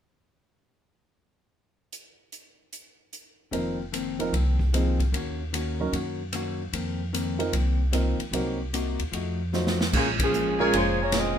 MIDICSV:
0, 0, Header, 1, 8, 480
1, 0, Start_track
1, 0, Tempo, 400802
1, 2299, Time_signature, 4, 2, 24, 8
1, 13633, End_track
2, 0, Start_track
2, 0, Title_t, "Trumpet section"
2, 0, Program_c, 0, 61
2, 11887, Note_on_c, 0, 70, 61
2, 11890, Note_on_c, 0, 73, 57
2, 11891, Note_on_c, 0, 77, 69
2, 11895, Note_on_c, 0, 68, 64
2, 12101, Note_off_c, 0, 70, 0
2, 12103, Note_off_c, 0, 73, 0
2, 12103, Note_off_c, 0, 77, 0
2, 12106, Note_off_c, 0, 68, 0
2, 12676, Note_on_c, 0, 68, 92
2, 12678, Note_on_c, 0, 73, 83
2, 12678, Note_on_c, 0, 80, 103
2, 12683, Note_on_c, 0, 70, 82
2, 13293, Note_off_c, 0, 68, 0
2, 13294, Note_off_c, 0, 73, 0
2, 13294, Note_off_c, 0, 80, 0
2, 13296, Note_off_c, 0, 70, 0
2, 13633, End_track
3, 0, Start_track
3, 0, Title_t, "Grand piano"
3, 0, Program_c, 1, 0
3, 4217, Note_on_c, 1, 53, 45
3, 4224, Note_on_c, 1, 60, 42
3, 4224, Note_on_c, 1, 63, 41
3, 4226, Note_on_c, 1, 70, 55
3, 4503, Note_off_c, 1, 53, 0
3, 4506, Note_off_c, 1, 60, 0
3, 4506, Note_off_c, 1, 63, 0
3, 4507, Note_off_c, 1, 70, 0
3, 5021, Note_on_c, 1, 53, 56
3, 5029, Note_on_c, 1, 60, 47
3, 5030, Note_on_c, 1, 63, 51
3, 5036, Note_on_c, 1, 70, 68
3, 5171, Note_off_c, 1, 53, 0
3, 5175, Note_off_c, 1, 60, 0
3, 5175, Note_off_c, 1, 63, 0
3, 5178, Note_off_c, 1, 70, 0
3, 5674, Note_on_c, 1, 60, 43
3, 5675, Note_on_c, 1, 53, 47
3, 5683, Note_on_c, 1, 63, 42
3, 5686, Note_on_c, 1, 68, 45
3, 5952, Note_off_c, 1, 53, 0
3, 5952, Note_off_c, 1, 60, 0
3, 5957, Note_off_c, 1, 63, 0
3, 5958, Note_off_c, 1, 68, 0
3, 6944, Note_on_c, 1, 54, 54
3, 6952, Note_on_c, 1, 61, 50
3, 6956, Note_on_c, 1, 63, 49
3, 6961, Note_on_c, 1, 70, 60
3, 7093, Note_off_c, 1, 54, 0
3, 7096, Note_off_c, 1, 61, 0
3, 7099, Note_off_c, 1, 63, 0
3, 7101, Note_off_c, 1, 70, 0
3, 8846, Note_on_c, 1, 60, 50
3, 8849, Note_on_c, 1, 53, 55
3, 8852, Note_on_c, 1, 70, 64
3, 8856, Note_on_c, 1, 63, 51
3, 9002, Note_off_c, 1, 60, 0
3, 9004, Note_off_c, 1, 53, 0
3, 9005, Note_off_c, 1, 70, 0
3, 9007, Note_off_c, 1, 63, 0
3, 9492, Note_on_c, 1, 53, 48
3, 9495, Note_on_c, 1, 60, 45
3, 9502, Note_on_c, 1, 63, 45
3, 9507, Note_on_c, 1, 70, 51
3, 9779, Note_off_c, 1, 53, 0
3, 9780, Note_off_c, 1, 60, 0
3, 9783, Note_off_c, 1, 63, 0
3, 9786, Note_off_c, 1, 70, 0
3, 9976, Note_on_c, 1, 54, 46
3, 9981, Note_on_c, 1, 63, 41
3, 9982, Note_on_c, 1, 60, 40
3, 9993, Note_on_c, 1, 70, 54
3, 10260, Note_off_c, 1, 54, 0
3, 10262, Note_off_c, 1, 63, 0
3, 10263, Note_off_c, 1, 60, 0
3, 10268, Note_off_c, 1, 70, 0
3, 11419, Note_on_c, 1, 54, 45
3, 11425, Note_on_c, 1, 63, 44
3, 11425, Note_on_c, 1, 65, 42
3, 11425, Note_on_c, 1, 72, 52
3, 11699, Note_off_c, 1, 54, 0
3, 11702, Note_off_c, 1, 63, 0
3, 11702, Note_off_c, 1, 65, 0
3, 11702, Note_off_c, 1, 72, 0
3, 12682, Note_on_c, 1, 56, 66
3, 12685, Note_on_c, 1, 61, 58
3, 12686, Note_on_c, 1, 65, 67
3, 12697, Note_on_c, 1, 70, 81
3, 12834, Note_off_c, 1, 56, 0
3, 12836, Note_off_c, 1, 61, 0
3, 12836, Note_off_c, 1, 65, 0
3, 12842, Note_off_c, 1, 70, 0
3, 13633, End_track
4, 0, Start_track
4, 0, Title_t, "Saxophone section"
4, 0, Program_c, 2, 65
4, 11930, Note_on_c, 2, 65, 73
4, 11931, Note_on_c, 2, 61, 69
4, 11935, Note_on_c, 2, 58, 65
4, 11940, Note_on_c, 2, 56, 65
4, 12063, Note_off_c, 2, 61, 0
4, 12063, Note_off_c, 2, 65, 0
4, 12066, Note_off_c, 2, 58, 0
4, 12071, Note_off_c, 2, 56, 0
4, 12244, Note_on_c, 2, 61, 67
4, 12245, Note_on_c, 2, 58, 68
4, 12247, Note_on_c, 2, 68, 80
4, 12254, Note_on_c, 2, 53, 69
4, 12827, Note_off_c, 2, 61, 0
4, 12828, Note_off_c, 2, 58, 0
4, 12829, Note_off_c, 2, 68, 0
4, 12833, Note_off_c, 2, 53, 0
4, 12868, Note_on_c, 2, 72, 91
4, 12872, Note_on_c, 2, 65, 76
4, 12875, Note_on_c, 2, 61, 83
4, 12879, Note_on_c, 2, 56, 72
4, 13151, Note_off_c, 2, 72, 0
4, 13153, Note_off_c, 2, 65, 0
4, 13155, Note_off_c, 2, 61, 0
4, 13156, Note_off_c, 2, 56, 0
4, 13189, Note_on_c, 2, 65, 70
4, 13192, Note_on_c, 2, 58, 72
4, 13197, Note_on_c, 2, 68, 73
4, 13197, Note_on_c, 2, 73, 82
4, 13344, Note_off_c, 2, 65, 0
4, 13345, Note_off_c, 2, 58, 0
4, 13348, Note_off_c, 2, 68, 0
4, 13348, Note_off_c, 2, 73, 0
4, 13379, Note_on_c, 2, 68, 71
4, 13382, Note_on_c, 2, 75, 82
4, 13384, Note_on_c, 2, 60, 69
4, 13389, Note_on_c, 2, 65, 74
4, 13633, Note_off_c, 2, 60, 0
4, 13633, Note_off_c, 2, 65, 0
4, 13633, Note_off_c, 2, 68, 0
4, 13633, Note_off_c, 2, 75, 0
4, 13633, End_track
5, 0, Start_track
5, 0, Title_t, "Hollow-body jazz guitar"
5, 0, Program_c, 3, 26
5, 4208, Note_on_c, 3, 41, 45
5, 4218, Note_on_c, 3, 51, 45
5, 4231, Note_on_c, 3, 58, 50
5, 4241, Note_on_c, 3, 60, 51
5, 4546, Note_off_c, 3, 41, 0
5, 4551, Note_off_c, 3, 51, 0
5, 4558, Note_off_c, 3, 58, 0
5, 4563, Note_off_c, 3, 60, 0
5, 4699, Note_on_c, 3, 41, 57
5, 4707, Note_on_c, 3, 51, 64
5, 4713, Note_on_c, 3, 58, 60
5, 4721, Note_on_c, 3, 60, 70
5, 5032, Note_off_c, 3, 41, 0
5, 5036, Note_off_c, 3, 51, 0
5, 5039, Note_off_c, 3, 58, 0
5, 5043, Note_off_c, 3, 60, 0
5, 5189, Note_on_c, 3, 41, 49
5, 5196, Note_on_c, 3, 51, 55
5, 5205, Note_on_c, 3, 58, 45
5, 5217, Note_on_c, 3, 60, 48
5, 5517, Note_off_c, 3, 41, 0
5, 5521, Note_off_c, 3, 51, 0
5, 5526, Note_off_c, 3, 58, 0
5, 5532, Note_off_c, 3, 60, 0
5, 5662, Note_on_c, 3, 41, 53
5, 5667, Note_on_c, 3, 51, 57
5, 5673, Note_on_c, 3, 58, 62
5, 5681, Note_on_c, 3, 60, 65
5, 5994, Note_off_c, 3, 41, 0
5, 5996, Note_off_c, 3, 51, 0
5, 6000, Note_off_c, 3, 58, 0
5, 6003, Note_off_c, 3, 60, 0
5, 6142, Note_on_c, 3, 51, 46
5, 6153, Note_on_c, 3, 58, 45
5, 6166, Note_on_c, 3, 61, 52
5, 6179, Note_on_c, 3, 66, 44
5, 6474, Note_off_c, 3, 51, 0
5, 6480, Note_off_c, 3, 58, 0
5, 6486, Note_off_c, 3, 61, 0
5, 6493, Note_off_c, 3, 66, 0
5, 6622, Note_on_c, 3, 51, 68
5, 6635, Note_on_c, 3, 58, 64
5, 6647, Note_on_c, 3, 66, 60
5, 6648, Note_on_c, 3, 61, 68
5, 6954, Note_off_c, 3, 51, 0
5, 6961, Note_off_c, 3, 58, 0
5, 6967, Note_off_c, 3, 61, 0
5, 6967, Note_off_c, 3, 66, 0
5, 7095, Note_on_c, 3, 51, 49
5, 7107, Note_on_c, 3, 58, 47
5, 7113, Note_on_c, 3, 61, 51
5, 7131, Note_on_c, 3, 66, 55
5, 7431, Note_off_c, 3, 51, 0
5, 7436, Note_off_c, 3, 58, 0
5, 7439, Note_off_c, 3, 61, 0
5, 7448, Note_off_c, 3, 66, 0
5, 7584, Note_on_c, 3, 51, 57
5, 7600, Note_on_c, 3, 58, 60
5, 7602, Note_on_c, 3, 61, 58
5, 7611, Note_on_c, 3, 66, 66
5, 7915, Note_off_c, 3, 51, 0
5, 7923, Note_off_c, 3, 58, 0
5, 7923, Note_off_c, 3, 61, 0
5, 7928, Note_off_c, 3, 66, 0
5, 8060, Note_on_c, 3, 41, 42
5, 8066, Note_on_c, 3, 51, 47
5, 8081, Note_on_c, 3, 58, 49
5, 8081, Note_on_c, 3, 60, 50
5, 8392, Note_off_c, 3, 41, 0
5, 8395, Note_off_c, 3, 51, 0
5, 8403, Note_off_c, 3, 58, 0
5, 8403, Note_off_c, 3, 60, 0
5, 8538, Note_on_c, 3, 41, 58
5, 8542, Note_on_c, 3, 51, 63
5, 8550, Note_on_c, 3, 58, 68
5, 8556, Note_on_c, 3, 60, 69
5, 8870, Note_off_c, 3, 41, 0
5, 8873, Note_off_c, 3, 51, 0
5, 8877, Note_off_c, 3, 58, 0
5, 8880, Note_off_c, 3, 60, 0
5, 9009, Note_on_c, 3, 41, 49
5, 9017, Note_on_c, 3, 51, 50
5, 9029, Note_on_c, 3, 58, 50
5, 9039, Note_on_c, 3, 60, 61
5, 9346, Note_off_c, 3, 41, 0
5, 9350, Note_off_c, 3, 51, 0
5, 9356, Note_off_c, 3, 58, 0
5, 9361, Note_off_c, 3, 60, 0
5, 9478, Note_on_c, 3, 41, 59
5, 9492, Note_on_c, 3, 51, 58
5, 9499, Note_on_c, 3, 58, 62
5, 9501, Note_on_c, 3, 60, 65
5, 9819, Note_off_c, 3, 41, 0
5, 9827, Note_off_c, 3, 51, 0
5, 9830, Note_off_c, 3, 58, 0
5, 9831, Note_off_c, 3, 60, 0
5, 9970, Note_on_c, 3, 48, 48
5, 9990, Note_on_c, 3, 58, 50
5, 10000, Note_on_c, 3, 63, 46
5, 10004, Note_on_c, 3, 66, 54
5, 10305, Note_off_c, 3, 48, 0
5, 10315, Note_off_c, 3, 58, 0
5, 10320, Note_off_c, 3, 63, 0
5, 10322, Note_off_c, 3, 66, 0
5, 10459, Note_on_c, 3, 48, 68
5, 10468, Note_on_c, 3, 58, 69
5, 10474, Note_on_c, 3, 63, 67
5, 10474, Note_on_c, 3, 66, 68
5, 10789, Note_off_c, 3, 48, 0
5, 10793, Note_off_c, 3, 58, 0
5, 10796, Note_off_c, 3, 63, 0
5, 10796, Note_off_c, 3, 66, 0
5, 10918, Note_on_c, 3, 53, 46
5, 10941, Note_on_c, 3, 57, 48
5, 10949, Note_on_c, 3, 63, 50
5, 10954, Note_on_c, 3, 66, 48
5, 11257, Note_off_c, 3, 53, 0
5, 11269, Note_off_c, 3, 57, 0
5, 11273, Note_off_c, 3, 63, 0
5, 11276, Note_off_c, 3, 66, 0
5, 11413, Note_on_c, 3, 53, 55
5, 11427, Note_on_c, 3, 57, 60
5, 11427, Note_on_c, 3, 63, 65
5, 11437, Note_on_c, 3, 66, 66
5, 11744, Note_off_c, 3, 53, 0
5, 11751, Note_off_c, 3, 57, 0
5, 11751, Note_off_c, 3, 63, 0
5, 11756, Note_off_c, 3, 66, 0
5, 11884, Note_on_c, 3, 46, 50
5, 11900, Note_on_c, 3, 53, 49
5, 11904, Note_on_c, 3, 56, 43
5, 11922, Note_on_c, 3, 61, 45
5, 12219, Note_off_c, 3, 46, 0
5, 12227, Note_off_c, 3, 53, 0
5, 12229, Note_off_c, 3, 56, 0
5, 12238, Note_off_c, 3, 61, 0
5, 12361, Note_on_c, 3, 46, 60
5, 12365, Note_on_c, 3, 53, 63
5, 12380, Note_on_c, 3, 56, 61
5, 12380, Note_on_c, 3, 61, 60
5, 12696, Note_off_c, 3, 46, 0
5, 12698, Note_off_c, 3, 53, 0
5, 12706, Note_off_c, 3, 56, 0
5, 12706, Note_off_c, 3, 61, 0
5, 12837, Note_on_c, 3, 46, 47
5, 12845, Note_on_c, 3, 53, 45
5, 12864, Note_on_c, 3, 56, 47
5, 12867, Note_on_c, 3, 61, 48
5, 13173, Note_off_c, 3, 46, 0
5, 13177, Note_off_c, 3, 53, 0
5, 13187, Note_off_c, 3, 56, 0
5, 13188, Note_off_c, 3, 61, 0
5, 13308, Note_on_c, 3, 46, 60
5, 13322, Note_on_c, 3, 53, 55
5, 13332, Note_on_c, 3, 56, 61
5, 13340, Note_on_c, 3, 61, 69
5, 13633, Note_off_c, 3, 46, 0
5, 13633, Note_off_c, 3, 53, 0
5, 13633, Note_off_c, 3, 56, 0
5, 13633, Note_off_c, 3, 61, 0
5, 13633, End_track
6, 0, Start_track
6, 0, Title_t, "Upright bass"
6, 0, Program_c, 4, 32
6, 4215, Note_on_c, 4, 29, 70
6, 5134, Note_off_c, 4, 29, 0
6, 5180, Note_on_c, 4, 36, 81
6, 6096, Note_off_c, 4, 36, 0
6, 6134, Note_on_c, 4, 39, 77
6, 7053, Note_off_c, 4, 39, 0
6, 7092, Note_on_c, 4, 42, 76
6, 8011, Note_off_c, 4, 42, 0
6, 8056, Note_on_c, 4, 41, 73
6, 8972, Note_off_c, 4, 41, 0
6, 9014, Note_on_c, 4, 36, 78
6, 9763, Note_off_c, 4, 36, 0
6, 9956, Note_on_c, 4, 36, 70
6, 10712, Note_off_c, 4, 36, 0
6, 10766, Note_on_c, 4, 39, 59
6, 10919, Note_off_c, 4, 39, 0
6, 10926, Note_on_c, 4, 41, 81
6, 11842, Note_off_c, 4, 41, 0
6, 11901, Note_on_c, 4, 34, 78
6, 12808, Note_off_c, 4, 34, 0
6, 12855, Note_on_c, 4, 29, 79
6, 13596, Note_off_c, 4, 29, 0
6, 13633, End_track
7, 0, Start_track
7, 0, Title_t, "Muted upright bass strokes"
7, 9807, Note_on_c, 9, 29, 36
7, 9927, Note_off_c, 9, 29, 0
7, 13633, End_track
8, 0, Start_track
8, 0, Title_t, "Drums"
8, 2306, Note_on_c, 9, 42, 53
8, 2425, Note_off_c, 9, 42, 0
8, 2783, Note_on_c, 9, 42, 47
8, 2903, Note_off_c, 9, 42, 0
8, 3264, Note_on_c, 9, 42, 48
8, 3384, Note_off_c, 9, 42, 0
8, 3746, Note_on_c, 9, 42, 44
8, 3865, Note_off_c, 9, 42, 0
8, 4226, Note_on_c, 9, 51, 50
8, 4346, Note_off_c, 9, 51, 0
8, 4713, Note_on_c, 9, 44, 53
8, 4713, Note_on_c, 9, 51, 55
8, 4833, Note_off_c, 9, 44, 0
8, 4833, Note_off_c, 9, 51, 0
8, 5026, Note_on_c, 9, 51, 39
8, 5146, Note_off_c, 9, 51, 0
8, 5194, Note_on_c, 9, 51, 51
8, 5314, Note_off_c, 9, 51, 0
8, 5501, Note_on_c, 9, 36, 49
8, 5621, Note_off_c, 9, 36, 0
8, 5676, Note_on_c, 9, 44, 43
8, 5676, Note_on_c, 9, 51, 50
8, 5677, Note_on_c, 9, 37, 50
8, 5796, Note_off_c, 9, 44, 0
8, 5796, Note_off_c, 9, 51, 0
8, 5797, Note_off_c, 9, 37, 0
8, 5984, Note_on_c, 9, 36, 50
8, 5990, Note_on_c, 9, 51, 34
8, 6103, Note_off_c, 9, 36, 0
8, 6109, Note_off_c, 9, 51, 0
8, 6155, Note_on_c, 9, 51, 58
8, 6275, Note_off_c, 9, 51, 0
8, 6632, Note_on_c, 9, 44, 53
8, 6632, Note_on_c, 9, 51, 57
8, 6752, Note_off_c, 9, 44, 0
8, 6752, Note_off_c, 9, 51, 0
8, 7105, Note_on_c, 9, 51, 51
8, 7225, Note_off_c, 9, 51, 0
8, 7576, Note_on_c, 9, 44, 48
8, 7576, Note_on_c, 9, 51, 53
8, 7577, Note_on_c, 9, 37, 55
8, 7696, Note_off_c, 9, 44, 0
8, 7696, Note_off_c, 9, 51, 0
8, 7697, Note_off_c, 9, 37, 0
8, 8064, Note_on_c, 9, 51, 56
8, 8184, Note_off_c, 9, 51, 0
8, 8556, Note_on_c, 9, 44, 55
8, 8556, Note_on_c, 9, 51, 58
8, 8675, Note_off_c, 9, 44, 0
8, 8675, Note_off_c, 9, 51, 0
8, 8859, Note_on_c, 9, 51, 43
8, 8978, Note_off_c, 9, 51, 0
8, 9020, Note_on_c, 9, 51, 59
8, 9140, Note_off_c, 9, 51, 0
8, 9497, Note_on_c, 9, 44, 48
8, 9497, Note_on_c, 9, 51, 57
8, 9498, Note_on_c, 9, 37, 50
8, 9617, Note_off_c, 9, 44, 0
8, 9617, Note_off_c, 9, 51, 0
8, 9618, Note_off_c, 9, 37, 0
8, 9818, Note_on_c, 9, 51, 39
8, 9937, Note_off_c, 9, 51, 0
8, 9980, Note_on_c, 9, 51, 60
8, 10099, Note_off_c, 9, 51, 0
8, 10463, Note_on_c, 9, 44, 57
8, 10463, Note_on_c, 9, 51, 53
8, 10583, Note_off_c, 9, 44, 0
8, 10583, Note_off_c, 9, 51, 0
8, 10772, Note_on_c, 9, 51, 40
8, 10892, Note_off_c, 9, 51, 0
8, 10937, Note_on_c, 9, 51, 53
8, 11057, Note_off_c, 9, 51, 0
8, 11418, Note_on_c, 9, 44, 47
8, 11419, Note_on_c, 9, 38, 37
8, 11538, Note_off_c, 9, 44, 0
8, 11539, Note_off_c, 9, 38, 0
8, 11579, Note_on_c, 9, 38, 54
8, 11699, Note_off_c, 9, 38, 0
8, 11744, Note_on_c, 9, 38, 64
8, 11864, Note_off_c, 9, 38, 0
8, 11896, Note_on_c, 9, 49, 72
8, 11897, Note_on_c, 9, 36, 76
8, 12015, Note_off_c, 9, 49, 0
8, 12017, Note_off_c, 9, 36, 0
8, 12209, Note_on_c, 9, 36, 73
8, 12210, Note_on_c, 9, 51, 62
8, 12329, Note_off_c, 9, 36, 0
8, 12329, Note_off_c, 9, 51, 0
8, 12379, Note_on_c, 9, 44, 54
8, 12499, Note_off_c, 9, 44, 0
8, 12856, Note_on_c, 9, 51, 61
8, 12975, Note_off_c, 9, 51, 0
8, 13320, Note_on_c, 9, 44, 50
8, 13320, Note_on_c, 9, 51, 60
8, 13321, Note_on_c, 9, 38, 58
8, 13439, Note_off_c, 9, 44, 0
8, 13439, Note_off_c, 9, 51, 0
8, 13441, Note_off_c, 9, 38, 0
8, 13633, End_track
0, 0, End_of_file